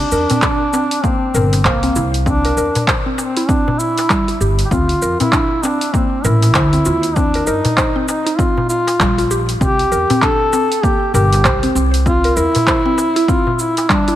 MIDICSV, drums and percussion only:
0, 0, Header, 1, 3, 480
1, 0, Start_track
1, 0, Tempo, 612245
1, 1776, Time_signature, 4, 2, 24, 8
1, 11098, End_track
2, 0, Start_track
2, 0, Title_t, "Darbuka"
2, 240, Note_on_c, 9, 64, 86
2, 319, Note_off_c, 9, 64, 0
2, 575, Note_on_c, 9, 62, 38
2, 578, Note_on_c, 9, 63, 60
2, 654, Note_off_c, 9, 62, 0
2, 657, Note_off_c, 9, 63, 0
2, 1065, Note_on_c, 9, 64, 89
2, 1143, Note_off_c, 9, 64, 0
2, 1200, Note_on_c, 9, 62, 60
2, 1278, Note_off_c, 9, 62, 0
2, 1440, Note_on_c, 9, 62, 35
2, 1519, Note_off_c, 9, 62, 0
2, 1542, Note_on_c, 9, 63, 39
2, 1621, Note_off_c, 9, 63, 0
2, 2162, Note_on_c, 9, 64, 85
2, 2240, Note_off_c, 9, 64, 0
2, 2494, Note_on_c, 9, 63, 63
2, 2572, Note_off_c, 9, 63, 0
2, 2880, Note_on_c, 9, 62, 35
2, 2883, Note_on_c, 9, 64, 85
2, 2959, Note_off_c, 9, 62, 0
2, 2961, Note_off_c, 9, 64, 0
2, 3124, Note_on_c, 9, 62, 61
2, 3126, Note_on_c, 9, 63, 70
2, 3202, Note_off_c, 9, 62, 0
2, 3204, Note_off_c, 9, 63, 0
2, 3606, Note_on_c, 9, 62, 37
2, 3684, Note_off_c, 9, 62, 0
2, 4082, Note_on_c, 9, 64, 91
2, 4161, Note_off_c, 9, 64, 0
2, 4424, Note_on_c, 9, 62, 36
2, 4429, Note_on_c, 9, 63, 62
2, 4502, Note_off_c, 9, 62, 0
2, 4508, Note_off_c, 9, 63, 0
2, 4901, Note_on_c, 9, 64, 89
2, 4980, Note_off_c, 9, 64, 0
2, 5038, Note_on_c, 9, 62, 64
2, 5116, Note_off_c, 9, 62, 0
2, 5284, Note_on_c, 9, 62, 30
2, 5363, Note_off_c, 9, 62, 0
2, 5377, Note_on_c, 9, 63, 37
2, 5455, Note_off_c, 9, 63, 0
2, 5998, Note_on_c, 9, 64, 96
2, 6076, Note_off_c, 9, 64, 0
2, 6339, Note_on_c, 9, 63, 64
2, 6417, Note_off_c, 9, 63, 0
2, 6722, Note_on_c, 9, 64, 79
2, 6726, Note_on_c, 9, 62, 36
2, 6800, Note_off_c, 9, 64, 0
2, 6804, Note_off_c, 9, 62, 0
2, 6957, Note_on_c, 9, 63, 63
2, 6961, Note_on_c, 9, 62, 54
2, 7036, Note_off_c, 9, 63, 0
2, 7039, Note_off_c, 9, 62, 0
2, 7204, Note_on_c, 9, 62, 32
2, 7283, Note_off_c, 9, 62, 0
2, 7443, Note_on_c, 9, 62, 30
2, 7522, Note_off_c, 9, 62, 0
2, 7920, Note_on_c, 9, 64, 98
2, 7999, Note_off_c, 9, 64, 0
2, 8255, Note_on_c, 9, 62, 32
2, 8255, Note_on_c, 9, 63, 57
2, 8333, Note_off_c, 9, 62, 0
2, 8334, Note_off_c, 9, 63, 0
2, 8738, Note_on_c, 9, 64, 87
2, 8816, Note_off_c, 9, 64, 0
2, 8891, Note_on_c, 9, 62, 66
2, 8969, Note_off_c, 9, 62, 0
2, 9114, Note_on_c, 9, 62, 34
2, 9192, Note_off_c, 9, 62, 0
2, 9217, Note_on_c, 9, 63, 34
2, 9295, Note_off_c, 9, 63, 0
2, 9845, Note_on_c, 9, 64, 86
2, 9924, Note_off_c, 9, 64, 0
2, 10175, Note_on_c, 9, 63, 60
2, 10253, Note_off_c, 9, 63, 0
2, 10559, Note_on_c, 9, 64, 69
2, 10565, Note_on_c, 9, 62, 37
2, 10637, Note_off_c, 9, 64, 0
2, 10643, Note_off_c, 9, 62, 0
2, 10801, Note_on_c, 9, 62, 66
2, 10805, Note_on_c, 9, 63, 59
2, 10880, Note_off_c, 9, 62, 0
2, 10884, Note_off_c, 9, 63, 0
2, 11098, End_track
3, 0, Start_track
3, 0, Title_t, "Drums"
3, 91, Note_on_c, 9, 82, 69
3, 170, Note_off_c, 9, 82, 0
3, 232, Note_on_c, 9, 46, 54
3, 235, Note_on_c, 9, 82, 32
3, 311, Note_off_c, 9, 46, 0
3, 313, Note_off_c, 9, 82, 0
3, 329, Note_on_c, 9, 39, 94
3, 332, Note_on_c, 9, 36, 90
3, 332, Note_on_c, 9, 82, 42
3, 408, Note_off_c, 9, 39, 0
3, 410, Note_off_c, 9, 36, 0
3, 410, Note_off_c, 9, 82, 0
3, 574, Note_on_c, 9, 82, 74
3, 652, Note_off_c, 9, 82, 0
3, 716, Note_on_c, 9, 46, 56
3, 718, Note_on_c, 9, 82, 31
3, 794, Note_off_c, 9, 46, 0
3, 796, Note_off_c, 9, 82, 0
3, 813, Note_on_c, 9, 36, 97
3, 815, Note_on_c, 9, 82, 40
3, 891, Note_off_c, 9, 36, 0
3, 894, Note_off_c, 9, 82, 0
3, 1055, Note_on_c, 9, 82, 73
3, 1133, Note_off_c, 9, 82, 0
3, 1198, Note_on_c, 9, 46, 52
3, 1200, Note_on_c, 9, 82, 31
3, 1276, Note_off_c, 9, 46, 0
3, 1279, Note_off_c, 9, 82, 0
3, 1293, Note_on_c, 9, 36, 94
3, 1293, Note_on_c, 9, 39, 98
3, 1296, Note_on_c, 9, 82, 42
3, 1371, Note_off_c, 9, 36, 0
3, 1372, Note_off_c, 9, 39, 0
3, 1374, Note_off_c, 9, 82, 0
3, 1434, Note_on_c, 9, 46, 45
3, 1437, Note_on_c, 9, 82, 27
3, 1513, Note_off_c, 9, 46, 0
3, 1515, Note_off_c, 9, 82, 0
3, 1533, Note_on_c, 9, 82, 79
3, 1612, Note_off_c, 9, 82, 0
3, 1679, Note_on_c, 9, 46, 54
3, 1682, Note_on_c, 9, 82, 30
3, 1758, Note_off_c, 9, 46, 0
3, 1760, Note_off_c, 9, 82, 0
3, 1773, Note_on_c, 9, 36, 101
3, 1778, Note_on_c, 9, 82, 42
3, 1851, Note_off_c, 9, 36, 0
3, 1856, Note_off_c, 9, 82, 0
3, 1918, Note_on_c, 9, 46, 42
3, 1996, Note_off_c, 9, 46, 0
3, 2017, Note_on_c, 9, 82, 74
3, 2096, Note_off_c, 9, 82, 0
3, 2159, Note_on_c, 9, 46, 52
3, 2161, Note_on_c, 9, 82, 33
3, 2237, Note_off_c, 9, 46, 0
3, 2240, Note_off_c, 9, 82, 0
3, 2254, Note_on_c, 9, 36, 100
3, 2258, Note_on_c, 9, 39, 97
3, 2260, Note_on_c, 9, 82, 41
3, 2332, Note_off_c, 9, 36, 0
3, 2336, Note_off_c, 9, 39, 0
3, 2339, Note_off_c, 9, 82, 0
3, 2497, Note_on_c, 9, 82, 76
3, 2576, Note_off_c, 9, 82, 0
3, 2639, Note_on_c, 9, 46, 54
3, 2641, Note_on_c, 9, 82, 35
3, 2717, Note_off_c, 9, 46, 0
3, 2719, Note_off_c, 9, 82, 0
3, 2734, Note_on_c, 9, 36, 104
3, 2737, Note_on_c, 9, 82, 43
3, 2813, Note_off_c, 9, 36, 0
3, 2816, Note_off_c, 9, 82, 0
3, 2976, Note_on_c, 9, 82, 74
3, 3055, Note_off_c, 9, 82, 0
3, 3117, Note_on_c, 9, 46, 51
3, 3119, Note_on_c, 9, 82, 32
3, 3195, Note_off_c, 9, 46, 0
3, 3198, Note_off_c, 9, 82, 0
3, 3214, Note_on_c, 9, 36, 98
3, 3214, Note_on_c, 9, 39, 95
3, 3216, Note_on_c, 9, 82, 42
3, 3292, Note_off_c, 9, 39, 0
3, 3293, Note_off_c, 9, 36, 0
3, 3295, Note_off_c, 9, 82, 0
3, 3357, Note_on_c, 9, 46, 41
3, 3360, Note_on_c, 9, 82, 30
3, 3436, Note_off_c, 9, 46, 0
3, 3438, Note_off_c, 9, 82, 0
3, 3458, Note_on_c, 9, 82, 76
3, 3536, Note_off_c, 9, 82, 0
3, 3596, Note_on_c, 9, 46, 54
3, 3598, Note_on_c, 9, 82, 32
3, 3674, Note_off_c, 9, 46, 0
3, 3677, Note_off_c, 9, 82, 0
3, 3694, Note_on_c, 9, 36, 99
3, 3697, Note_on_c, 9, 82, 39
3, 3773, Note_off_c, 9, 36, 0
3, 3776, Note_off_c, 9, 82, 0
3, 3836, Note_on_c, 9, 46, 42
3, 3914, Note_off_c, 9, 46, 0
3, 3935, Note_on_c, 9, 82, 75
3, 4014, Note_off_c, 9, 82, 0
3, 4078, Note_on_c, 9, 46, 51
3, 4080, Note_on_c, 9, 82, 33
3, 4156, Note_off_c, 9, 46, 0
3, 4159, Note_off_c, 9, 82, 0
3, 4174, Note_on_c, 9, 36, 107
3, 4175, Note_on_c, 9, 39, 89
3, 4177, Note_on_c, 9, 82, 46
3, 4253, Note_off_c, 9, 36, 0
3, 4254, Note_off_c, 9, 39, 0
3, 4256, Note_off_c, 9, 82, 0
3, 4417, Note_on_c, 9, 82, 75
3, 4495, Note_off_c, 9, 82, 0
3, 4558, Note_on_c, 9, 46, 51
3, 4560, Note_on_c, 9, 82, 35
3, 4636, Note_off_c, 9, 46, 0
3, 4638, Note_off_c, 9, 82, 0
3, 4654, Note_on_c, 9, 36, 105
3, 4659, Note_on_c, 9, 82, 45
3, 4733, Note_off_c, 9, 36, 0
3, 4737, Note_off_c, 9, 82, 0
3, 4896, Note_on_c, 9, 82, 77
3, 4975, Note_off_c, 9, 82, 0
3, 5037, Note_on_c, 9, 46, 54
3, 5039, Note_on_c, 9, 82, 36
3, 5115, Note_off_c, 9, 46, 0
3, 5118, Note_off_c, 9, 82, 0
3, 5131, Note_on_c, 9, 39, 97
3, 5133, Note_on_c, 9, 82, 46
3, 5135, Note_on_c, 9, 36, 94
3, 5210, Note_off_c, 9, 39, 0
3, 5212, Note_off_c, 9, 82, 0
3, 5213, Note_off_c, 9, 36, 0
3, 5275, Note_on_c, 9, 46, 41
3, 5278, Note_on_c, 9, 82, 31
3, 5354, Note_off_c, 9, 46, 0
3, 5356, Note_off_c, 9, 82, 0
3, 5373, Note_on_c, 9, 82, 80
3, 5451, Note_off_c, 9, 82, 0
3, 5513, Note_on_c, 9, 46, 49
3, 5515, Note_on_c, 9, 82, 36
3, 5591, Note_off_c, 9, 46, 0
3, 5594, Note_off_c, 9, 82, 0
3, 5614, Note_on_c, 9, 82, 39
3, 5615, Note_on_c, 9, 36, 97
3, 5693, Note_off_c, 9, 82, 0
3, 5694, Note_off_c, 9, 36, 0
3, 5755, Note_on_c, 9, 46, 38
3, 5834, Note_off_c, 9, 46, 0
3, 5855, Note_on_c, 9, 82, 69
3, 5933, Note_off_c, 9, 82, 0
3, 5995, Note_on_c, 9, 46, 50
3, 5997, Note_on_c, 9, 82, 31
3, 6073, Note_off_c, 9, 46, 0
3, 6076, Note_off_c, 9, 82, 0
3, 6095, Note_on_c, 9, 39, 92
3, 6096, Note_on_c, 9, 36, 97
3, 6098, Note_on_c, 9, 82, 45
3, 6174, Note_off_c, 9, 36, 0
3, 6174, Note_off_c, 9, 39, 0
3, 6176, Note_off_c, 9, 82, 0
3, 6337, Note_on_c, 9, 82, 78
3, 6416, Note_off_c, 9, 82, 0
3, 6480, Note_on_c, 9, 46, 54
3, 6483, Note_on_c, 9, 82, 34
3, 6559, Note_off_c, 9, 46, 0
3, 6561, Note_off_c, 9, 82, 0
3, 6575, Note_on_c, 9, 36, 109
3, 6580, Note_on_c, 9, 82, 42
3, 6654, Note_off_c, 9, 36, 0
3, 6658, Note_off_c, 9, 82, 0
3, 6818, Note_on_c, 9, 82, 78
3, 6896, Note_off_c, 9, 82, 0
3, 6960, Note_on_c, 9, 46, 52
3, 6963, Note_on_c, 9, 82, 33
3, 7039, Note_off_c, 9, 46, 0
3, 7041, Note_off_c, 9, 82, 0
3, 7055, Note_on_c, 9, 36, 95
3, 7059, Note_on_c, 9, 39, 100
3, 7061, Note_on_c, 9, 82, 46
3, 7133, Note_off_c, 9, 36, 0
3, 7137, Note_off_c, 9, 39, 0
3, 7140, Note_off_c, 9, 82, 0
3, 7201, Note_on_c, 9, 46, 39
3, 7203, Note_on_c, 9, 82, 32
3, 7279, Note_off_c, 9, 46, 0
3, 7282, Note_off_c, 9, 82, 0
3, 7298, Note_on_c, 9, 82, 84
3, 7377, Note_off_c, 9, 82, 0
3, 7438, Note_on_c, 9, 46, 52
3, 7441, Note_on_c, 9, 82, 34
3, 7517, Note_off_c, 9, 46, 0
3, 7519, Note_off_c, 9, 82, 0
3, 7534, Note_on_c, 9, 36, 95
3, 7537, Note_on_c, 9, 82, 44
3, 7612, Note_off_c, 9, 36, 0
3, 7616, Note_off_c, 9, 82, 0
3, 7678, Note_on_c, 9, 46, 40
3, 7757, Note_off_c, 9, 46, 0
3, 7778, Note_on_c, 9, 82, 71
3, 7857, Note_off_c, 9, 82, 0
3, 7918, Note_on_c, 9, 46, 47
3, 7921, Note_on_c, 9, 82, 30
3, 7997, Note_off_c, 9, 46, 0
3, 7999, Note_off_c, 9, 82, 0
3, 8014, Note_on_c, 9, 36, 96
3, 8014, Note_on_c, 9, 39, 86
3, 8016, Note_on_c, 9, 82, 42
3, 8092, Note_off_c, 9, 36, 0
3, 8092, Note_off_c, 9, 39, 0
3, 8095, Note_off_c, 9, 82, 0
3, 8255, Note_on_c, 9, 82, 74
3, 8334, Note_off_c, 9, 82, 0
3, 8402, Note_on_c, 9, 46, 50
3, 8404, Note_on_c, 9, 82, 32
3, 8480, Note_off_c, 9, 46, 0
3, 8483, Note_off_c, 9, 82, 0
3, 8494, Note_on_c, 9, 36, 105
3, 8501, Note_on_c, 9, 82, 42
3, 8572, Note_off_c, 9, 36, 0
3, 8579, Note_off_c, 9, 82, 0
3, 8739, Note_on_c, 9, 82, 76
3, 8817, Note_off_c, 9, 82, 0
3, 8879, Note_on_c, 9, 46, 53
3, 8882, Note_on_c, 9, 82, 32
3, 8958, Note_off_c, 9, 46, 0
3, 8960, Note_off_c, 9, 82, 0
3, 8974, Note_on_c, 9, 36, 98
3, 8975, Note_on_c, 9, 39, 91
3, 8977, Note_on_c, 9, 82, 44
3, 9053, Note_off_c, 9, 36, 0
3, 9053, Note_off_c, 9, 39, 0
3, 9056, Note_off_c, 9, 82, 0
3, 9118, Note_on_c, 9, 46, 42
3, 9120, Note_on_c, 9, 82, 29
3, 9196, Note_off_c, 9, 46, 0
3, 9199, Note_off_c, 9, 82, 0
3, 9220, Note_on_c, 9, 82, 77
3, 9298, Note_off_c, 9, 82, 0
3, 9360, Note_on_c, 9, 46, 52
3, 9362, Note_on_c, 9, 82, 32
3, 9438, Note_off_c, 9, 46, 0
3, 9441, Note_off_c, 9, 82, 0
3, 9454, Note_on_c, 9, 36, 94
3, 9457, Note_on_c, 9, 82, 41
3, 9533, Note_off_c, 9, 36, 0
3, 9536, Note_off_c, 9, 82, 0
3, 9598, Note_on_c, 9, 46, 42
3, 9677, Note_off_c, 9, 46, 0
3, 9696, Note_on_c, 9, 82, 70
3, 9774, Note_off_c, 9, 82, 0
3, 9837, Note_on_c, 9, 46, 53
3, 9839, Note_on_c, 9, 82, 29
3, 9915, Note_off_c, 9, 46, 0
3, 9918, Note_off_c, 9, 82, 0
3, 9934, Note_on_c, 9, 36, 92
3, 9936, Note_on_c, 9, 39, 84
3, 9938, Note_on_c, 9, 82, 41
3, 10013, Note_off_c, 9, 36, 0
3, 10014, Note_off_c, 9, 39, 0
3, 10017, Note_off_c, 9, 82, 0
3, 10178, Note_on_c, 9, 82, 76
3, 10256, Note_off_c, 9, 82, 0
3, 10320, Note_on_c, 9, 46, 51
3, 10322, Note_on_c, 9, 82, 30
3, 10398, Note_off_c, 9, 46, 0
3, 10400, Note_off_c, 9, 82, 0
3, 10414, Note_on_c, 9, 36, 106
3, 10418, Note_on_c, 9, 82, 43
3, 10493, Note_off_c, 9, 36, 0
3, 10496, Note_off_c, 9, 82, 0
3, 10654, Note_on_c, 9, 82, 73
3, 10733, Note_off_c, 9, 82, 0
3, 10797, Note_on_c, 9, 46, 54
3, 10799, Note_on_c, 9, 82, 32
3, 10875, Note_off_c, 9, 46, 0
3, 10878, Note_off_c, 9, 82, 0
3, 10894, Note_on_c, 9, 36, 95
3, 10896, Note_on_c, 9, 39, 87
3, 10899, Note_on_c, 9, 82, 40
3, 10973, Note_off_c, 9, 36, 0
3, 10975, Note_off_c, 9, 39, 0
3, 10977, Note_off_c, 9, 82, 0
3, 11037, Note_on_c, 9, 46, 45
3, 11039, Note_on_c, 9, 82, 29
3, 11098, Note_off_c, 9, 46, 0
3, 11098, Note_off_c, 9, 82, 0
3, 11098, End_track
0, 0, End_of_file